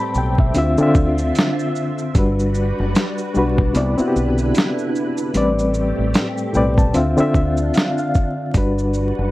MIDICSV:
0, 0, Header, 1, 5, 480
1, 0, Start_track
1, 0, Key_signature, 1, "major"
1, 0, Tempo, 800000
1, 1291, Time_signature, 4, 2, 24, 8
1, 5587, End_track
2, 0, Start_track
2, 0, Title_t, "Reed electric piano"
2, 0, Program_c, 0, 4
2, 0, Control_c, 0, 64, 127
2, 0, Note_on_c, 0, 45, 92
2, 0, Note_on_c, 0, 55, 81
2, 0, Note_on_c, 0, 60, 81
2, 0, Note_on_c, 0, 71, 75
2, 0, Note_on_c, 0, 74, 81
2, 0, Note_on_c, 0, 81, 69
2, 0, Note_on_c, 0, 83, 77
2, 0, Note_on_c, 0, 84, 62
2, 86, Note_off_c, 0, 83, 0
2, 107, Note_on_c, 0, 79, 68
2, 232, Note_off_c, 0, 79, 0
2, 239, Note_on_c, 0, 76, 76
2, 326, Note_on_c, 0, 50, 87
2, 334, Note_off_c, 0, 60, 0
2, 334, Note_on_c, 0, 60, 80
2, 337, Control_c, 0, 64, 0
2, 339, Note_off_c, 0, 71, 0
2, 340, Note_off_c, 0, 55, 0
2, 341, Note_off_c, 0, 74, 0
2, 341, Note_on_c, 0, 65, 82
2, 342, Note_off_c, 0, 76, 0
2, 342, Note_off_c, 0, 81, 0
2, 342, Note_off_c, 0, 84, 0
2, 343, Note_off_c, 0, 45, 0
2, 350, Note_on_c, 0, 76, 103
2, 441, Note_off_c, 0, 50, 0
2, 441, Control_c, 0, 64, 127
2, 445, Note_off_c, 0, 60, 0
2, 448, Note_off_c, 0, 65, 0
2, 453, Note_off_c, 0, 76, 0
2, 470, Note_on_c, 0, 50, 90
2, 481, Note_on_c, 0, 60, 82
2, 486, Note_on_c, 0, 65, 85
2, 495, Note_on_c, 0, 76, 102
2, 1047, Note_off_c, 0, 50, 0
2, 1052, Note_off_c, 0, 60, 0
2, 1054, Note_off_c, 0, 65, 0
2, 1059, Note_off_c, 0, 76, 0
2, 1290, Note_on_c, 0, 55, 87
2, 1296, Note_on_c, 0, 62, 76
2, 1298, Control_c, 0, 64, 0
2, 1305, Note_on_c, 0, 66, 74
2, 1311, Note_on_c, 0, 71, 87
2, 1402, Control_c, 0, 64, 127
2, 1806, Note_off_c, 0, 55, 0
2, 1809, Note_off_c, 0, 62, 0
2, 1814, Note_off_c, 0, 66, 0
2, 1817, Note_off_c, 0, 71, 0
2, 2005, Note_on_c, 0, 55, 79
2, 2016, Note_on_c, 0, 62, 73
2, 2023, Note_on_c, 0, 66, 92
2, 2031, Note_on_c, 0, 71, 91
2, 2240, Note_on_c, 0, 48, 86
2, 2247, Note_on_c, 0, 59, 83
2, 2248, Note_off_c, 0, 55, 0
2, 2253, Note_off_c, 0, 62, 0
2, 2255, Note_on_c, 0, 64, 73
2, 2257, Note_off_c, 0, 66, 0
2, 2257, Control_c, 0, 64, 0
2, 2261, Note_off_c, 0, 71, 0
2, 2261, Note_on_c, 0, 74, 86
2, 2358, Note_off_c, 0, 48, 0
2, 2361, Note_off_c, 0, 59, 0
2, 2365, Note_off_c, 0, 64, 0
2, 2368, Note_off_c, 0, 74, 0
2, 2381, Control_c, 0, 64, 127
2, 2385, Note_on_c, 0, 60, 95
2, 2392, Note_on_c, 0, 59, 79
2, 2399, Note_on_c, 0, 64, 83
2, 2408, Note_on_c, 0, 66, 85
2, 2432, Note_off_c, 0, 66, 0
2, 2446, Note_on_c, 0, 67, 96
2, 2964, Note_off_c, 0, 60, 0
2, 2967, Note_off_c, 0, 59, 0
2, 2971, Note_off_c, 0, 64, 0
2, 2994, Note_off_c, 0, 67, 0
2, 3202, Note_on_c, 0, 45, 80
2, 3207, Note_on_c, 0, 55, 79
2, 3214, Note_on_c, 0, 60, 71
2, 3217, Note_on_c, 0, 71, 84
2, 3218, Control_c, 0, 64, 0
2, 3224, Note_on_c, 0, 74, 96
2, 3337, Control_c, 0, 64, 127
2, 3722, Note_off_c, 0, 45, 0
2, 3725, Note_off_c, 0, 55, 0
2, 3728, Note_off_c, 0, 60, 0
2, 3730, Note_off_c, 0, 71, 0
2, 3733, Note_off_c, 0, 74, 0
2, 3919, Note_on_c, 0, 45, 88
2, 3924, Note_on_c, 0, 55, 71
2, 3931, Note_on_c, 0, 79, 72
2, 3932, Note_on_c, 0, 60, 76
2, 3936, Note_on_c, 0, 71, 89
2, 3941, Note_on_c, 0, 74, 98
2, 4061, Note_off_c, 0, 79, 0
2, 4067, Note_on_c, 0, 81, 71
2, 4158, Note_off_c, 0, 60, 0
2, 4158, Note_on_c, 0, 50, 89
2, 4161, Note_off_c, 0, 81, 0
2, 4165, Note_off_c, 0, 45, 0
2, 4166, Note_on_c, 0, 60, 81
2, 4167, Note_off_c, 0, 55, 0
2, 4170, Note_on_c, 0, 77, 64
2, 4171, Note_on_c, 0, 65, 80
2, 4173, Note_off_c, 0, 71, 0
2, 4176, Note_off_c, 0, 74, 0
2, 4177, Control_c, 0, 64, 0
2, 4180, Note_on_c, 0, 76, 91
2, 4274, Control_c, 0, 64, 127
2, 4277, Note_off_c, 0, 50, 0
2, 4281, Note_off_c, 0, 60, 0
2, 4283, Note_off_c, 0, 65, 0
2, 4288, Note_off_c, 0, 76, 0
2, 4301, Note_on_c, 0, 50, 80
2, 4306, Note_on_c, 0, 60, 83
2, 4315, Note_on_c, 0, 65, 76
2, 4322, Note_on_c, 0, 76, 104
2, 4394, Note_off_c, 0, 77, 0
2, 4411, Note_off_c, 0, 76, 0
2, 4418, Note_on_c, 0, 76, 67
2, 4638, Note_off_c, 0, 76, 0
2, 4653, Note_on_c, 0, 77, 67
2, 4783, Note_off_c, 0, 77, 0
2, 4794, Note_on_c, 0, 77, 66
2, 4882, Note_off_c, 0, 50, 0
2, 4884, Note_off_c, 0, 60, 0
2, 4889, Note_off_c, 0, 65, 0
2, 5108, Note_off_c, 0, 77, 0
2, 5123, Note_on_c, 0, 55, 78
2, 5129, Note_on_c, 0, 62, 79
2, 5138, Control_c, 0, 64, 0
2, 5139, Note_on_c, 0, 66, 72
2, 5146, Note_on_c, 0, 71, 99
2, 5257, Control_c, 0, 64, 127
2, 5587, Note_off_c, 0, 55, 0
2, 5587, Note_off_c, 0, 62, 0
2, 5587, Note_off_c, 0, 66, 0
2, 5587, Note_off_c, 0, 71, 0
2, 5587, End_track
3, 0, Start_track
3, 0, Title_t, "String machine"
3, 0, Program_c, 1, 50
3, 0, Note_on_c, 1, 57, 84
3, 0, Note_on_c, 1, 60, 79
3, 0, Note_on_c, 1, 67, 91
3, 318, Note_off_c, 1, 67, 0
3, 320, Note_off_c, 1, 57, 0
3, 327, Note_on_c, 1, 50, 85
3, 327, Note_on_c, 1, 76, 78
3, 330, Note_on_c, 1, 65, 103
3, 1269, Note_off_c, 1, 60, 0
3, 1279, Note_off_c, 1, 50, 0
3, 1279, Note_off_c, 1, 76, 0
3, 1281, Note_off_c, 1, 65, 0
3, 1288, Note_on_c, 1, 66, 72
3, 1289, Note_on_c, 1, 55, 84
3, 1289, Note_on_c, 1, 62, 75
3, 1289, Note_on_c, 1, 71, 92
3, 2239, Note_off_c, 1, 71, 0
3, 2240, Note_off_c, 1, 55, 0
3, 2240, Note_off_c, 1, 66, 0
3, 2244, Note_on_c, 1, 50, 87
3, 2246, Note_on_c, 1, 71, 82
3, 2249, Note_on_c, 1, 64, 97
3, 3191, Note_off_c, 1, 62, 0
3, 3198, Note_off_c, 1, 50, 0
3, 3199, Note_off_c, 1, 71, 0
3, 3200, Note_off_c, 1, 64, 0
3, 3211, Note_on_c, 1, 57, 84
3, 3211, Note_on_c, 1, 60, 80
3, 3211, Note_on_c, 1, 67, 92
3, 4161, Note_off_c, 1, 57, 0
3, 4161, Note_off_c, 1, 67, 0
3, 4167, Note_on_c, 1, 62, 78
3, 4169, Note_on_c, 1, 50, 89
3, 4170, Note_on_c, 1, 65, 96
3, 5112, Note_off_c, 1, 60, 0
3, 5119, Note_off_c, 1, 62, 0
3, 5120, Note_off_c, 1, 50, 0
3, 5120, Note_off_c, 1, 65, 0
3, 5127, Note_on_c, 1, 62, 78
3, 5127, Note_on_c, 1, 66, 72
3, 5129, Note_on_c, 1, 55, 89
3, 5129, Note_on_c, 1, 71, 95
3, 5587, Note_off_c, 1, 55, 0
3, 5587, Note_off_c, 1, 62, 0
3, 5587, Note_off_c, 1, 66, 0
3, 5587, Note_off_c, 1, 71, 0
3, 5587, End_track
4, 0, Start_track
4, 0, Title_t, "Fingered electric bass"
4, 0, Program_c, 2, 33
4, 92, Note_on_c, 2, 35, 95
4, 303, Note_off_c, 2, 35, 0
4, 335, Note_on_c, 2, 38, 109
4, 457, Note_off_c, 2, 38, 0
4, 572, Note_on_c, 2, 38, 92
4, 783, Note_off_c, 2, 38, 0
4, 1291, Note_on_c, 2, 31, 99
4, 1625, Note_off_c, 2, 31, 0
4, 1677, Note_on_c, 2, 30, 96
4, 1762, Note_off_c, 2, 30, 0
4, 2017, Note_on_c, 2, 35, 80
4, 2225, Note_off_c, 2, 35, 0
4, 2253, Note_on_c, 2, 36, 112
4, 2376, Note_off_c, 2, 36, 0
4, 2495, Note_on_c, 2, 35, 91
4, 2704, Note_off_c, 2, 35, 0
4, 3211, Note_on_c, 2, 33, 103
4, 3546, Note_off_c, 2, 33, 0
4, 3592, Note_on_c, 2, 33, 84
4, 3679, Note_off_c, 2, 33, 0
4, 3932, Note_on_c, 2, 35, 89
4, 4142, Note_off_c, 2, 35, 0
4, 4172, Note_on_c, 2, 38, 90
4, 4295, Note_off_c, 2, 38, 0
4, 4408, Note_on_c, 2, 38, 89
4, 4621, Note_off_c, 2, 38, 0
4, 5128, Note_on_c, 2, 31, 103
4, 5464, Note_off_c, 2, 31, 0
4, 5512, Note_on_c, 2, 30, 90
4, 5587, Note_off_c, 2, 30, 0
4, 5587, End_track
5, 0, Start_track
5, 0, Title_t, "Drums"
5, 87, Note_on_c, 9, 82, 54
5, 147, Note_off_c, 9, 82, 0
5, 230, Note_on_c, 9, 36, 94
5, 290, Note_off_c, 9, 36, 0
5, 327, Note_on_c, 9, 42, 66
5, 327, Note_on_c, 9, 82, 72
5, 387, Note_off_c, 9, 42, 0
5, 387, Note_off_c, 9, 82, 0
5, 466, Note_on_c, 9, 82, 52
5, 526, Note_off_c, 9, 82, 0
5, 568, Note_on_c, 9, 82, 54
5, 569, Note_on_c, 9, 36, 108
5, 629, Note_off_c, 9, 36, 0
5, 629, Note_off_c, 9, 82, 0
5, 709, Note_on_c, 9, 82, 56
5, 769, Note_off_c, 9, 82, 0
5, 811, Note_on_c, 9, 42, 66
5, 811, Note_on_c, 9, 82, 63
5, 832, Note_on_c, 9, 38, 113
5, 871, Note_off_c, 9, 42, 0
5, 871, Note_off_c, 9, 82, 0
5, 892, Note_off_c, 9, 38, 0
5, 956, Note_on_c, 9, 82, 39
5, 1016, Note_off_c, 9, 82, 0
5, 1054, Note_on_c, 9, 82, 46
5, 1114, Note_off_c, 9, 82, 0
5, 1190, Note_on_c, 9, 82, 51
5, 1250, Note_off_c, 9, 82, 0
5, 1290, Note_on_c, 9, 36, 122
5, 1290, Note_on_c, 9, 42, 70
5, 1290, Note_on_c, 9, 82, 70
5, 1350, Note_off_c, 9, 36, 0
5, 1350, Note_off_c, 9, 42, 0
5, 1350, Note_off_c, 9, 82, 0
5, 1437, Note_on_c, 9, 82, 52
5, 1497, Note_off_c, 9, 82, 0
5, 1527, Note_on_c, 9, 82, 52
5, 1587, Note_off_c, 9, 82, 0
5, 1772, Note_on_c, 9, 42, 64
5, 1772, Note_on_c, 9, 82, 72
5, 1779, Note_on_c, 9, 38, 119
5, 1832, Note_off_c, 9, 42, 0
5, 1832, Note_off_c, 9, 82, 0
5, 1839, Note_off_c, 9, 38, 0
5, 1908, Note_on_c, 9, 82, 47
5, 1968, Note_off_c, 9, 82, 0
5, 2009, Note_on_c, 9, 82, 52
5, 2069, Note_off_c, 9, 82, 0
5, 2150, Note_on_c, 9, 36, 94
5, 2210, Note_off_c, 9, 36, 0
5, 2248, Note_on_c, 9, 42, 68
5, 2248, Note_on_c, 9, 82, 65
5, 2308, Note_off_c, 9, 42, 0
5, 2308, Note_off_c, 9, 82, 0
5, 2390, Note_on_c, 9, 82, 49
5, 2450, Note_off_c, 9, 82, 0
5, 2497, Note_on_c, 9, 82, 54
5, 2557, Note_off_c, 9, 82, 0
5, 2629, Note_on_c, 9, 82, 54
5, 2689, Note_off_c, 9, 82, 0
5, 2728, Note_on_c, 9, 42, 63
5, 2728, Note_on_c, 9, 82, 68
5, 2748, Note_on_c, 9, 38, 96
5, 2788, Note_off_c, 9, 42, 0
5, 2788, Note_off_c, 9, 82, 0
5, 2808, Note_off_c, 9, 38, 0
5, 2872, Note_on_c, 9, 82, 39
5, 2932, Note_off_c, 9, 82, 0
5, 2973, Note_on_c, 9, 82, 44
5, 3033, Note_off_c, 9, 82, 0
5, 3105, Note_on_c, 9, 82, 58
5, 3165, Note_off_c, 9, 82, 0
5, 3206, Note_on_c, 9, 42, 66
5, 3206, Note_on_c, 9, 82, 73
5, 3266, Note_off_c, 9, 42, 0
5, 3266, Note_off_c, 9, 82, 0
5, 3353, Note_on_c, 9, 82, 49
5, 3413, Note_off_c, 9, 82, 0
5, 3445, Note_on_c, 9, 82, 50
5, 3505, Note_off_c, 9, 82, 0
5, 3685, Note_on_c, 9, 42, 69
5, 3685, Note_on_c, 9, 82, 67
5, 3692, Note_on_c, 9, 38, 107
5, 3745, Note_off_c, 9, 42, 0
5, 3745, Note_off_c, 9, 82, 0
5, 3752, Note_off_c, 9, 38, 0
5, 3826, Note_on_c, 9, 82, 42
5, 3886, Note_off_c, 9, 82, 0
5, 3925, Note_on_c, 9, 82, 48
5, 3985, Note_off_c, 9, 82, 0
5, 4067, Note_on_c, 9, 36, 83
5, 4071, Note_on_c, 9, 82, 40
5, 4126, Note_off_c, 9, 36, 0
5, 4131, Note_off_c, 9, 82, 0
5, 4166, Note_on_c, 9, 42, 67
5, 4166, Note_on_c, 9, 82, 62
5, 4226, Note_off_c, 9, 42, 0
5, 4226, Note_off_c, 9, 82, 0
5, 4306, Note_on_c, 9, 82, 51
5, 4366, Note_off_c, 9, 82, 0
5, 4406, Note_on_c, 9, 36, 102
5, 4408, Note_on_c, 9, 82, 52
5, 4466, Note_off_c, 9, 36, 0
5, 4468, Note_off_c, 9, 82, 0
5, 4543, Note_on_c, 9, 82, 52
5, 4603, Note_off_c, 9, 82, 0
5, 4644, Note_on_c, 9, 42, 58
5, 4644, Note_on_c, 9, 82, 62
5, 4664, Note_on_c, 9, 38, 103
5, 4704, Note_off_c, 9, 42, 0
5, 4704, Note_off_c, 9, 82, 0
5, 4724, Note_off_c, 9, 38, 0
5, 4787, Note_on_c, 9, 82, 42
5, 4847, Note_off_c, 9, 82, 0
5, 4886, Note_on_c, 9, 82, 45
5, 4891, Note_on_c, 9, 36, 88
5, 4946, Note_off_c, 9, 82, 0
5, 4951, Note_off_c, 9, 36, 0
5, 5126, Note_on_c, 9, 36, 114
5, 5126, Note_on_c, 9, 42, 70
5, 5126, Note_on_c, 9, 82, 77
5, 5186, Note_off_c, 9, 36, 0
5, 5186, Note_off_c, 9, 42, 0
5, 5186, Note_off_c, 9, 82, 0
5, 5271, Note_on_c, 9, 82, 50
5, 5331, Note_off_c, 9, 82, 0
5, 5363, Note_on_c, 9, 82, 51
5, 5423, Note_off_c, 9, 82, 0
5, 5587, End_track
0, 0, End_of_file